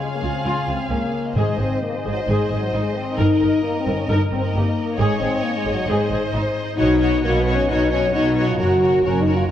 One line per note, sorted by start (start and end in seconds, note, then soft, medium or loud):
0.00 1.38 C#3 soft
0.00 0.44 G#3 soft
0.00 0.58 C#4 soft
0.00 0.28 F4 soft
0.00 0.13 G#4 soft
0.00 1.32 G#4 soft
0.00 0.89 C#5 soft
0.00 1.31 F5 soft
0.15 0.22 A#3 soft
0.15 0.74 G#4 soft
0.22 0.30 C#2 soft
0.22 0.31 C#2 soft
0.22 0.30 F4 soft
0.29 0.46 C4 soft
0.29 1.19 F4 soft
0.45 0.53 C#2 soft
0.45 3.19 G#3 soft
0.45 0.56 C#4 soft
0.45 0.66 F4 soft
0.60 1.38 C#4 soft
0.67 0.76 C#2 soft
0.67 0.90 C4 soft
0.67 0.75 F4 soft
0.76 1.04 G#4 soft
0.90 0.98 C#2 soft
0.90 0.99 C#2 soft
0.90 1.35 A#3 soft
0.90 0.98 C#4 soft
0.90 1.38 C#5 soft
1.06 1.66 G#4 soft
1.21 1.38 F4 soft
1.35 1.44 G#1 soft
1.35 2.00 G#2 soft
1.35 3.20 G#2 soft
1.35 1.45 G#2 soft
1.35 1.59 G#3 medium
1.35 1.58 G#4 soft
1.35 3.13 C5 soft
1.35 4.94 D#5 soft
1.51 2.43 C4 soft
1.59 1.67 G#1 soft
1.59 1.68 G#2 soft
1.59 1.82 C4 medium
1.59 1.67 G#4 soft
1.67 1.98 G#4 soft
1.82 1.97 A#3 medium
1.82 2.72 C5 soft
1.98 2.04 G#3 soft
1.98 2.57 G#4 soft
2.05 2.13 G#1 soft
2.05 2.14 G#2 soft
2.05 2.13 G#4 soft
2.12 2.19 F#3 soft
2.12 3.02 D#4 soft
2.27 2.36 G#1 soft
2.27 2.37 G#2 soft
2.27 3.20 D#3 soft
2.27 2.48 G#3 soft
2.27 2.49 G#4 soft
2.44 3.20 C4 soft
2.49 2.58 G#1 soft
2.49 2.59 G#2 soft
2.49 2.57 G#3 medium
2.49 2.58 G#4 soft
2.58 2.73 F#3 soft
2.58 2.87 G#4 soft
2.73 2.81 G#1 soft
2.73 2.82 G#2 soft
2.73 2.96 G#3 medium
2.73 2.82 D#4 soft
2.73 3.20 C5 soft
2.88 3.20 G#4 soft
2.96 3.18 C4 medium
3.03 3.62 D#4 soft
3.17 3.26 G1 medium
3.17 3.27 G2 medium
3.17 4.08 G2 soft
3.17 3.63 D#4 medium
3.17 4.94 A#4 soft
3.17 3.39 A#4 medium
3.33 4.23 A#3 soft
3.41 3.49 G1 soft
3.41 3.50 G2 soft
3.41 3.50 A#4 soft
3.48 3.78 A#4 soft
3.63 3.78 A#3 medium
3.63 3.92 D#4 soft
3.79 3.94 C4 medium
3.79 4.38 A#4 soft
3.86 3.94 G1 soft
3.86 3.94 G2 soft
3.86 3.95 A#4 soft
3.94 4.09 C#4 medium
3.94 4.54 D#4 soft
4.08 4.16 G1 medium
4.08 4.16 G2 medium
4.08 5.00 G2 soft
4.08 4.19 D#4 medium
4.08 4.29 A#4 medium
4.24 5.00 A#3 soft
4.31 4.39 G1 soft
4.31 4.39 G2 soft
4.31 4.42 C4 medium
4.31 4.41 A#4 soft
4.39 4.68 A#4 soft
4.54 4.62 G1 soft
4.54 4.62 G2 soft
4.54 4.98 A#3 medium
4.54 4.83 D#4 soft
4.54 4.63 G4 soft
4.69 5.00 A#4 soft
4.84 5.73 D#4 soft
4.96 5.07 G#1 medium
4.96 5.07 G#2 medium
4.96 5.87 G#2 medium
4.96 5.20 G#3 medium
4.96 5.19 G#4 medium
4.96 5.85 C#5 soft
4.96 6.75 D#5 soft
5.14 5.90 C#4 soft
5.19 5.28 G#1 soft
5.19 5.29 G#2 soft
5.19 5.42 C4 medium
5.19 5.29 G#4 soft
5.29 5.57 G#4 soft
5.43 5.58 A#3 medium
5.43 5.90 C#5 soft
5.57 5.72 G#3 medium
5.57 6.17 G#4 soft
5.65 5.74 G#1 soft
5.65 5.74 G#2 soft
5.65 5.73 G#4 soft
5.73 5.88 F#3 medium
5.73 6.62 D#4 soft
5.88 5.96 G#1 medium
5.88 6.80 G#2 soft
5.88 5.97 G#2 medium
5.88 6.10 G#3 medium
5.88 6.09 G#4 medium
5.88 6.78 C5 medium
6.03 6.80 C4 soft
6.10 6.18 G#1 soft
6.10 6.19 G#2 soft
6.10 6.19 G#4 soft
6.19 6.47 G#4 soft
6.33 6.41 G#1 soft
6.33 6.41 G#2 soft
6.33 6.41 D#4 soft
6.33 6.81 C5 soft
6.48 6.80 G#4 soft
6.64 8.61 D#4 soft
6.78 7.18 B1 medium
6.78 7.18 B2 medium
6.78 8.61 B2 medium
6.78 7.20 D#4 medium
6.78 7.00 F#4 medium
6.78 7.00 C#5 medium
6.78 6.98 D#5 medium
6.93 7.83 B3 soft
7.00 7.23 F#4 soft
7.00 7.23 C#5 soft
7.00 7.22 D#5 soft
7.09 7.38 F#4 soft
7.23 7.63 B1 medium
7.23 7.64 B2 medium
7.23 7.39 A#3 medium
7.23 7.45 F#4 soft
7.23 8.12 B4 soft
7.23 7.45 C#5 soft
7.23 7.45 D#5 soft
7.39 7.54 B3 medium
7.39 7.98 F#4 soft
7.46 7.68 F#4 soft
7.46 7.68 C#5 soft
7.46 7.68 D#5 soft
7.54 8.43 C#4 soft
7.54 7.69 C#4 medium
7.68 8.08 B1 medium
7.68 8.09 B2 medium
7.68 9.51 F#3 soft
7.68 7.92 D#4 medium
7.68 7.90 F#4 medium
7.68 7.90 C#5 soft
7.68 7.91 D#5 soft
7.84 8.61 B3 soft
7.91 8.14 C#4 medium
7.91 8.14 F#4 soft
7.91 8.12 C#5 soft
7.91 8.13 D#5 soft
7.99 8.28 F#4 soft
8.13 8.54 B1 medium
8.13 8.54 B2 medium
8.13 8.48 D#4 medium
8.13 8.36 F#4 soft
8.13 8.60 B4 soft
8.13 8.35 C#5 soft
8.13 8.36 D#5 soft
8.29 8.88 F#4 soft
8.37 8.59 F#4 soft
8.37 8.59 C#5 soft
8.37 8.59 D#5 soft
8.44 9.33 C#4 soft
8.49 8.60 F4 medium
8.58 8.99 F#1 medium
8.58 9.51 F#2 medium
8.58 8.99 F#2 medium
8.58 9.04 F#4 medium
8.58 8.82 F#4 medium
8.58 8.80 A#4 soft
8.58 8.80 C#5 soft
8.73 9.51 A#3 soft
8.81 9.03 F#4 soft
8.81 9.03 A#4 soft
8.81 9.04 C#5 soft
8.90 9.18 F#4 soft
9.04 9.44 F#1 medium
9.04 9.44 F#2 medium
9.04 9.20 C#4 medium
9.04 9.26 F#4 soft
9.04 9.25 A#4 soft
9.04 9.51 A#4 soft
9.04 9.26 C#5 soft
9.19 9.35 D#4 medium
9.19 9.51 F#4 soft
9.27 9.49 F#4 soft
9.27 9.47 A#4 soft
9.27 9.49 C#5 soft
9.34 9.51 C#4 soft
9.34 9.43 F4 medium